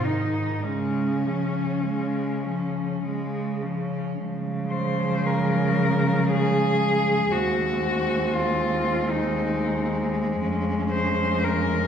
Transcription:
0.00 0.50 G#2 soft
0.00 0.63 D#3 soft
0.00 0.64 D#4 soft
0.00 0.65 D#4 soft
0.63 1.71 C#3 soft
0.63 1.26 G#3 soft
0.63 3.03 C#4 medium
1.24 1.87 F3 soft
1.24 1.85 C#4 soft
1.83 2.90 C#3 soft
1.83 2.45 G#3 soft
1.83 2.46 G#3 soft
2.44 3.03 F3 soft
2.44 3.02 C#4 soft
3.03 4.05 C#3 soft
3.03 3.64 G#3 soft
3.62 4.17 F3 soft
3.62 4.18 C#4 soft
4.17 7.28 C#3 medium
4.17 7.29 F3 medium
4.17 7.29 G#3 medium
4.71 5.27 C5 medium
5.26 6.31 A#4 medium
6.31 7.34 G#4 medium
7.31 10.37 D#2 medium
7.31 11.87 G#3 medium
7.31 10.37 C4 medium
7.31 8.34 F#4 medium
8.33 9.12 F4 medium
9.11 9.89 D#4 medium
10.41 11.87 F2 medium
10.41 11.87 C#4 medium
10.92 11.46 C5 medium
11.44 11.87 A#4 medium

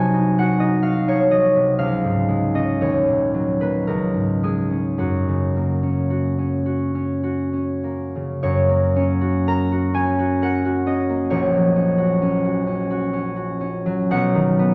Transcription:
0.00 1.82 C2 medium
0.00 1.54 C3 soft
0.00 1.30 F#3 soft
0.00 0.12 D#4 soft
0.00 0.38 F#4 soft
0.00 0.59 D#5 medium
0.00 0.37 F#5 medium
0.00 0.69 G#5 medium
0.00 1.82 A5 medium
0.13 0.60 D#4 soft
0.39 0.82 F#4 soft
0.39 1.84 F#5 medium
0.60 1.07 D#4 soft
0.60 0.99 D#5 medium
0.83 1.83 F#4 soft
0.83 1.23 F5 medium
1.08 1.83 D#4 soft
1.08 1.48 C#5 medium
1.30 1.83 F#3 soft
1.30 1.83 D#5 medium
1.55 1.83 C3 soft
1.79 2.84 C#2 soft
1.79 2.84 F5 medium
2.04 2.85 G#2 soft
2.29 2.84 G#3 soft
2.54 4.69 C#4 soft
2.54 2.98 D#5 medium
2.81 3.90 D#2 soft
2.81 6.72 C#5 medium
3.08 3.91 A#2 soft
3.34 3.91 F#3 soft
3.61 3.91 A#3 soft
3.61 4.06 B4 medium
3.87 5.03 C#2 soft
3.87 4.81 A#4 medium
4.14 5.02 G#2 soft
4.43 5.03 G#3 soft
4.43 5.03 G#4 medium
4.70 5.82 C#4 soft
4.98 8.42 F#2 soft
4.98 6.09 F#4 soft
5.28 8.14 C#3 soft
5.57 7.82 A#3 soft
5.83 6.37 C#4 soft
6.10 6.64 F#4 soft
6.38 6.94 C#4 soft
6.66 7.22 F#4 soft
6.95 7.52 C#4 soft
7.23 9.20 F#4 soft
7.53 8.95 C#4 soft
7.84 8.68 A#3 soft
8.15 8.46 C#3 soft
8.43 11.35 F#2 medium
8.43 11.29 C#5 medium
8.69 11.08 A#3 soft
8.96 9.93 C#4 medium
9.21 9.71 F#4 soft
9.47 10.41 A#4 medium
9.47 13.38 A#5 medium
9.72 10.18 F#4 soft
9.94 10.85 C#4 soft
9.94 10.71 G#5 medium
10.19 10.64 F#4 soft
10.42 14.16 A#4 soft
10.42 14.10 F#5 medium
10.65 11.97 F#4 soft
10.86 11.74 C#4 medium
10.86 11.63 D#5 medium
11.09 14.15 A#3 soft
11.30 14.15 A#1 medium
11.30 14.14 C#5 medium
11.53 13.85 F#3 soft
11.76 12.21 C#4 medium
11.98 12.44 F#4 medium
12.22 12.66 C#4 medium
12.45 12.89 F#4 soft
12.67 13.12 C#4 soft
12.90 13.35 F#4 medium
13.13 13.59 C#4 medium
13.36 14.74 F#4 soft
13.61 14.14 C#4 medium
13.86 14.74 F#3 medium
14.11 14.74 B1 medium
14.11 14.74 F#5 medium
14.35 14.74 D#3 medium
14.59 14.74 B3 medium

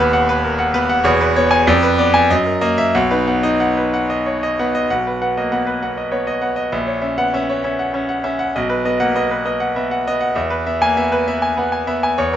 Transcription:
0.00 1.01 D#1 loud
0.00 1.02 D#2 loud
0.00 0.74 B3 loud
0.00 0.29 B4 loud
0.00 0.13 F#5 loud
0.13 0.38 F#5 loud
0.29 0.54 B4 loud
0.44 0.60 A#4 medium
0.59 0.84 F#5 loud
0.74 0.99 B3 loud
0.74 0.99 B4 loud
0.90 1.05 F#5 loud
1.03 1.64 E1 loud
1.03 1.64 E2 loud
1.03 1.29 C#5 medium
1.21 1.45 B4 medium
1.36 1.61 B3 medium
1.36 1.61 C#5 loud
1.51 1.66 G#5 loud
1.67 2.28 F2 loud
1.67 1.92 D5 medium
1.83 2.08 B4 medium
1.98 2.23 B3 medium
1.98 2.23 D5 loud
2.14 2.29 G#5 loud
2.30 2.93 F#2 medium
2.30 2.55 D#5 loud
2.46 2.71 A#4 medium
2.61 2.87 A#3 medium
2.61 2.87 D#5 medium
2.78 2.94 E5 loud
2.95 4.87 B1 loud
2.95 3.21 F#5 loud
3.11 3.38 D#4 medium
3.11 3.37 B4 medium
3.27 3.54 B3 medium
3.27 3.54 F#5 medium
3.43 3.70 D#4 medium
3.43 3.70 D#5 medium
3.60 3.87 F#5 medium
3.77 4.04 B4 medium
3.94 4.20 F#5 medium
4.10 4.36 D#5 medium
4.26 4.42 C#5 medium
4.43 4.68 D#5 medium
4.59 4.84 B3 medium
4.59 4.84 F#5 medium
4.75 4.90 D#5 medium
4.90 6.69 B1 medium
4.90 5.15 F#5 loud
5.07 5.31 B4 medium
5.22 5.46 B3 medium
5.22 5.46 F#5 medium
5.37 5.52 A#3 medium
5.37 5.62 D#5 medium
5.52 5.76 B3 medium
5.52 5.76 F#5 medium
5.67 5.91 B4 medium
5.83 6.07 B3 medium
5.83 6.07 F#5 medium
5.98 6.22 D#5 medium
6.12 6.36 B3 medium
6.12 6.27 C#5 medium
6.27 6.51 D#5 medium
6.42 6.66 B3 medium
6.42 6.66 F#5 medium
6.56 6.72 D#5 medium
6.72 8.51 A#1 medium
6.72 6.97 E5 medium
6.87 7.12 C#5 medium
7.02 7.27 C#4 medium
7.02 7.27 E5 medium
7.18 7.33 B3 medium
7.18 7.42 F#5 loud
7.34 7.58 C#4 medium
7.34 7.58 E5 medium
7.49 7.74 C#5 medium
7.64 7.89 C#4 medium
7.64 7.88 E5 medium
7.79 8.03 F#5 medium
7.94 8.18 C#4 medium
7.94 8.09 E5 medium
8.09 8.33 F#5 medium
8.24 8.48 C#4 medium
8.24 8.48 E5 medium
8.39 8.55 F#5 medium
8.56 10.33 B1 medium
8.56 8.80 D#5 medium
8.70 8.94 B4 medium
8.85 9.09 B3 medium
8.85 9.10 D#5 medium
9.00 9.15 A#3 medium
9.00 9.25 F#5 loud
9.15 9.40 B3 medium
9.15 9.40 D#5 medium
9.31 9.55 B4 medium
9.45 9.70 B3 medium
9.45 9.70 D#5 medium
9.60 9.85 F#5 medium
9.76 10.00 B3 medium
9.76 9.91 E5 medium
9.91 10.15 F#5 medium
10.07 10.31 B3 medium
10.07 10.31 D#5 medium
10.21 10.36 F#5 medium
10.35 12.13 E2 medium
10.35 10.60 E5 medium
10.50 10.75 B4 medium
10.67 10.91 B3 medium
10.67 10.91 E5 medium
10.81 10.97 A#3 medium
10.81 11.06 G#5 loud
10.97 11.21 B3 medium
10.97 11.21 E5 medium
11.12 11.36 B4 medium
11.28 11.52 B3 medium
11.28 11.52 E5 medium
11.42 11.67 G#5 medium
11.57 11.82 B3 medium
11.57 11.73 F#5 medium
11.72 11.97 G#5 medium
11.87 12.12 B3 medium
11.87 12.12 E5 medium
12.03 12.18 G#5 medium
12.18 12.37 E2 medium
12.18 12.37 C#5 medium
12.33 12.37 A#4 medium

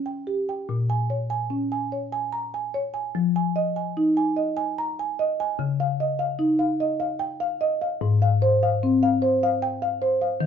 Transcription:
0.00 0.66 D#3 medium
0.00 0.19 C#4 medium
0.06 0.41 G5 medium
0.27 0.62 G4 medium
0.49 0.70 G5 medium
0.69 3.12 A#2 medium
0.90 1.23 G#5 medium
1.10 1.44 C#5 medium
1.30 1.64 G#5 medium
1.50 1.84 C#4 medium
1.72 2.05 G#5 medium
1.92 2.26 C#5 medium
2.12 2.46 G#5 medium
2.33 2.54 A#5 medium
2.54 2.87 G#5 medium
2.74 3.07 C#5 medium
2.94 3.15 G#5 medium
3.15 5.54 F3 medium
3.36 3.68 G#5 medium
3.56 3.88 D#5 medium
3.76 4.08 G#5 medium
3.97 4.29 D#4 medium
4.17 4.49 G#5 medium
4.36 4.69 D#5 medium
4.57 4.89 G#5 medium
4.78 4.98 A#5 medium
4.99 5.31 G#5 medium
5.19 5.51 D#5 medium
5.40 5.59 G#5 medium
5.59 7.96 C#3 medium
5.80 6.11 F5 medium
6.00 6.32 D#5 medium
6.19 6.51 F5 medium
6.39 6.71 D#4 medium
6.59 6.92 F5 medium
6.80 7.12 D#5 medium
7.00 7.32 F5 medium
7.19 7.40 G5 medium
7.40 7.72 F5 medium
7.61 7.92 D#5 medium
7.82 8.01 F5 medium
8.01 10.38 G#2 medium
8.22 8.54 F5 medium
8.42 8.74 C5 medium
8.63 8.94 F5 medium
8.83 9.14 C4 medium
9.03 9.34 F5 medium
9.22 9.54 C5 medium
9.43 9.75 F5 medium
9.62 9.82 G5 medium
9.82 10.14 F5 medium
10.02 10.33 C5 medium
10.22 10.41 F5 medium
10.40 10.46 D#3 medium

